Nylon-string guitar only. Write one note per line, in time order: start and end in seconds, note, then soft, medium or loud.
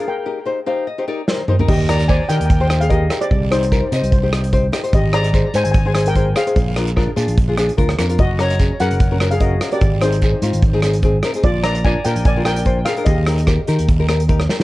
0.26 0.39 D#4 medium
0.26 0.39 G4 medium
0.26 0.39 A#4 medium
0.46 0.59 D#4 medium
0.46 0.59 G4 medium
0.46 0.59 C5 medium
0.66 0.85 D#4 medium
0.66 0.85 G4 medium
0.66 0.85 C5 loud
0.66 0.85 F5 medium
0.87 1.06 D#5 medium
0.98 1.04 D#4 medium
0.98 1.04 G4 medium
0.98 1.04 C5 medium
1.07 1.20 D#4 medium
1.07 1.20 G4 medium
1.07 1.20 A#4 loud
1.07 1.26 D5 medium
1.28 1.41 D#4 medium
1.28 1.40 G4 medium
1.28 1.41 A#4 medium
1.28 1.47 C5 medium
1.48 1.55 D#4 medium
1.48 1.54 G4 medium
1.48 1.59 A#4 medium
1.48 1.55 C5 medium
1.59 1.69 D#4 loud
1.59 1.69 G4 medium
1.59 1.69 A#4 loud
1.89 2.01 D#4 medium
1.89 2.01 G4 medium
1.89 2.01 A#4 medium
2.08 2.22 D#4 medium
2.08 2.22 G4 medium
2.08 2.22 C5 medium
2.29 2.48 D#4 medium
2.29 2.47 G4 medium
2.29 2.48 A#4 medium
2.59 2.66 D#4 medium
2.59 2.66 G4 medium
2.59 2.66 C5 medium
2.70 2.83 D#4 medium
2.70 2.83 G4 medium
2.70 2.83 C5 medium
2.89 3.03 D#4 medium
2.89 3.03 G4 medium
2.89 3.03 A#4 medium
3.10 3.17 D#4 medium
3.10 3.17 G4 medium
3.10 3.17 A#4 medium
3.21 3.31 D#4 medium
3.21 3.31 G4 medium
3.21 3.31 C5 medium
3.51 3.64 D#4 medium
3.51 3.64 G4 medium
3.51 3.64 C5 medium
3.72 3.85 D#4 medium
3.72 3.85 G4 medium
3.72 3.84 A#4 medium
3.92 4.10 D#4 medium
3.92 4.10 G4 medium
3.92 4.11 D#5 loud
4.23 4.29 D#4 medium
4.23 4.29 G4 medium
4.23 4.29 C5 medium
4.33 4.46 D#4 medium
4.33 4.45 G4 medium
4.33 4.46 D5 medium
4.53 4.66 D#4 loud
4.53 4.66 G4 medium
4.53 4.66 C5 loud
4.72 4.79 D#4 medium
4.72 4.79 G4 medium
4.72 4.80 D#5 medium
4.84 4.93 D#4 medium
4.84 4.93 G4 medium
4.84 4.93 C5 medium
5.14 5.27 D#4 medium
5.14 5.27 G#4 medium
5.14 5.27 C5 medium
5.34 5.47 D#4 medium
5.34 5.47 G#4 medium
5.34 5.47 C5 medium
5.54 5.73 D#4 medium
5.54 5.73 G#4 medium
5.54 5.73 C5 medium
5.85 5.91 D#4 medium
5.85 5.91 G#4 medium
5.85 5.91 C5 medium
5.95 6.08 D#4 medium
5.95 6.08 G#4 medium
5.95 6.08 C5 medium
6.15 6.28 D#4 medium
6.15 6.28 G#4 medium
6.15 6.28 C5 medium
6.35 6.42 D#4 medium
6.35 6.42 G#4 medium
6.35 6.42 C5 medium
6.46 6.56 D#4 medium
6.46 6.56 G#4 medium
6.46 6.56 C5 loud
6.76 6.89 D4 medium
6.76 6.89 F4 medium
6.76 6.89 A#4 medium
6.96 7.09 D4 medium
6.96 7.09 F4 medium
6.96 7.09 A#4 loud
7.16 7.35 D4 loud
7.16 7.35 F4 loud
7.16 7.35 G#4 loud
7.48 7.54 D4 medium
7.48 7.54 F4 medium
7.48 7.54 G#4 medium
7.57 7.71 D4 loud
7.57 7.70 F4 medium
7.57 7.70 G#4 medium
7.77 7.90 D4 medium
7.77 7.91 F4 medium
7.77 7.91 A#4 loud
7.98 8.05 D4 medium
7.98 8.05 F4 medium
7.98 8.05 A#4 medium
8.09 8.19 D4 medium
8.09 8.18 F4 medium
8.09 8.19 A#4 medium
8.39 8.52 C#4 medium
8.39 8.52 F#4 medium
8.39 8.52 A#4 medium
8.58 8.72 C#4 medium
8.58 8.72 F#4 medium
8.58 8.72 G#4 medium
8.80 8.98 C#4 medium
8.80 8.98 F#4 medium
8.80 8.98 G#4 medium
9.11 9.17 C#4 medium
9.11 9.17 F#4 medium
9.11 9.17 A#4 medium
9.21 9.33 C#4 medium
9.21 9.33 F#4 medium
9.21 9.34 A#4 medium
9.41 9.54 C#4 medium
9.41 9.54 F#4 medium
9.41 9.54 A#4 medium
9.61 9.68 C#4 medium
9.61 9.68 F#4 medium
9.61 9.68 A#4 medium
9.72 9.81 C#4 medium
9.72 9.81 F#4 medium
9.72 9.82 A#4 medium
10.02 10.15 C4 medium
10.02 10.15 D#4 medium
10.02 10.15 G#4 medium
10.22 10.35 C4 medium
10.22 10.35 D#4 medium
10.22 10.35 G#4 medium
10.42 10.61 C4 medium
10.42 10.61 D#4 medium
10.42 10.61 F4 loud
10.73 10.79 C4 medium
10.73 10.79 D#4 medium
10.73 10.79 G#4 loud
10.83 10.96 C4 medium
10.83 10.96 D#4 medium
10.83 10.96 G#4 loud
11.04 11.17 C4 medium
11.04 11.16 D#4 medium
11.04 11.17 G#4 loud
11.24 11.30 C4 medium
11.24 11.31 D#4 medium
11.24 11.31 A#4 loud
11.35 11.44 C4 medium
11.35 11.44 D#4 medium
11.35 11.44 G#4 medium
11.64 11.77 D4 medium
11.64 11.77 F4 medium
11.64 11.77 A#4 medium
11.85 11.98 D4 medium
11.85 11.98 F4 medium
11.85 11.98 A#4 medium
12.05 12.23 D4 medium
12.05 12.23 F4 medium
12.05 12.24 A#4 medium
12.36 12.42 D4 medium
12.36 12.42 F4 medium
12.36 12.42 A#4 medium
12.45 12.58 D4 medium
12.45 12.58 F4 medium
12.45 12.58 A#4 medium
12.66 12.79 D4 medium
12.66 12.79 F4 medium
12.66 12.79 C5 medium
12.86 12.93 D4 medium
12.86 12.93 F4 medium
12.86 12.93 A#4 medium
12.97 13.07 D4 medium
12.97 13.07 F4 medium
12.97 13.07 A#4 medium
13.27 13.40 D#4 medium
13.27 13.40 G4 medium
13.27 13.40 A#4 medium
13.47 13.60 D#4 medium
13.47 13.60 G4 medium
13.47 13.60 A#4 medium
13.68 13.86 D#4 loud
13.68 13.86 G4 medium
13.68 13.86 A#4 loud
13.99 14.05 D#4 medium
13.99 14.05 G4 medium
13.99 14.05 A#4 loud
14.09 14.21 D#4 medium
14.09 14.21 G4 medium
14.09 14.22 A#4 loud
14.28 14.41 D#4 medium
14.28 14.42 G4 medium
14.28 14.42 A#4 loud
14.49 14.56 D#4 medium
14.49 14.56 G4 medium
14.49 14.56 A#4 medium
14.60 14.63 D#4 medium